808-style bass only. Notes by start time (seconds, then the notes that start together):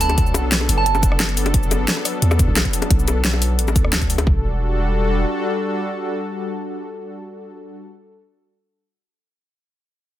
Already playing: D2
0.35 B1
0.69 F#1
2.22 E2
2.48 B1
2.91 B1
3.59 A1
3.76 D2
4.27 E1